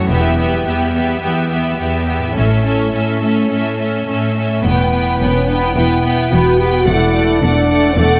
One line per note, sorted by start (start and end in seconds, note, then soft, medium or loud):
0.00 2.29 E2 soft
0.00 2.31 G3 soft
0.00 0.10 A3 soft
0.00 2.26 E4 soft
0.00 0.11 A4 soft
0.06 0.37 B3 soft
0.06 0.35 G4 soft
0.06 2.36 B4 soft
0.11 0.57 E1 medium
0.11 0.60 E2 soft
0.11 0.36 E5 soft
0.37 0.66 B3 soft
0.37 0.63 G4 soft
0.37 0.65 E5 soft
0.64 1.16 E2 soft
0.64 0.93 B3 soft
0.64 0.92 G4 soft
0.64 0.93 E5 soft
0.93 1.21 B3 soft
0.93 1.20 G4 soft
0.93 1.21 E5 soft
1.21 1.72 E2 soft
1.21 1.49 B3 soft
1.21 1.46 G4 soft
1.21 1.48 E5 soft
1.47 1.77 B3 soft
1.47 1.74 G4 soft
1.47 1.78 E5 soft
1.75 2.29 E2 soft
1.75 2.06 B3 soft
1.75 2.04 G4 soft
1.75 2.05 E5 soft
2.05 2.35 B3 soft
2.05 2.34 G4 soft
2.05 2.35 E5 soft
2.18 4.57 A2 soft
2.22 4.59 A3 soft
2.27 6.17 E4 soft
2.32 2.64 C#4 soft
2.32 2.61 A4 soft
2.32 4.64 C#5 soft
2.36 2.84 A1 soft
2.36 2.86 A2 soft
2.36 2.64 E5 soft
2.63 2.92 C#4 soft
2.63 2.89 A4 soft
2.63 2.93 E5 soft
2.90 3.44 A2 soft
2.90 3.21 C#4 soft
2.90 3.19 A4 soft
2.95 3.21 E5 soft
3.20 3.49 C#4 soft
3.20 3.48 A4 soft
3.20 3.49 E5 soft
3.49 4.00 A2 soft
3.49 3.77 C#4 soft
3.49 3.77 A4 soft
3.49 3.77 E5 soft
3.78 4.06 C#4 soft
3.78 4.06 A4 soft
3.78 4.06 E5 soft
4.07 4.57 A2 soft
4.07 4.35 C#4 soft
4.07 4.34 A4 soft
4.07 4.34 E5 soft
4.35 4.63 C#4 soft
4.35 4.63 A4 soft
4.35 4.63 E5 soft
4.63 5.11 E1 soft
4.63 5.11 E2 medium
4.63 6.85 E2 soft
4.63 4.91 B3 soft
4.63 5.16 B3 medium
4.63 4.91 B4 soft
4.63 4.90 G5 soft
4.91 5.47 B3 soft
4.91 5.19 B3 soft
4.91 5.19 B4 soft
4.91 5.18 G5 soft
5.19 5.67 E1 soft
5.19 5.67 E2 soft
5.19 5.46 B3 soft
5.19 5.48 C#4 medium
5.19 6.31 B4 soft
5.19 5.48 B4 soft
5.19 5.46 G5 soft
5.47 5.74 B3 soft
5.47 6.03 B3 soft
5.47 5.62 D4 soft
5.47 5.75 B4 soft
5.47 5.75 G5 soft
5.62 5.76 E4 medium
5.75 6.23 E1 soft
5.75 6.23 E2 soft
5.75 6.90 B2 soft
5.75 6.03 B3 soft
5.75 6.31 E4 medium
5.75 6.03 B4 soft
5.75 6.03 G5 soft
6.04 6.30 B3 soft
6.04 6.58 B3 soft
6.04 6.32 B4 soft
6.04 6.30 G5 soft
6.31 6.79 E1 soft
6.31 6.79 E2 medium
6.31 6.57 B3 soft
6.31 6.59 F#4 medium
6.31 6.90 B4 soft
6.31 6.58 B4 soft
6.31 6.58 G5 soft
6.58 6.86 B3 soft
6.58 6.89 B3 soft
6.58 6.73 G4 medium
6.58 6.87 B4 soft
6.58 6.87 G5 soft
6.75 6.88 F#4 medium
6.86 7.33 E1 medium
6.86 7.96 E2 medium
6.86 7.34 E2 medium
6.86 7.14 A3 soft
6.86 7.43 E4 medium
6.86 7.11 D5 soft
6.86 7.14 F#5 soft
7.12 7.42 A3 soft
7.12 7.69 D4 soft
7.12 7.40 D5 soft
7.12 7.41 F#5 soft
7.41 7.89 E1 medium
7.41 7.89 E2 medium
7.41 7.69 A3 soft
7.41 7.97 D4 medium
7.41 8.20 A4 soft
7.41 7.68 D5 soft
7.41 7.68 F#5 soft
7.69 7.96 A3 soft
7.69 8.20 D4 soft
7.69 7.95 D5 medium
7.69 7.96 F#5 soft
7.97 8.20 E1 medium
7.97 8.20 E2 soft
7.97 8.20 E2 medium
7.97 8.20 A3 medium
7.97 8.20 D5 medium
7.97 8.20 F#5 medium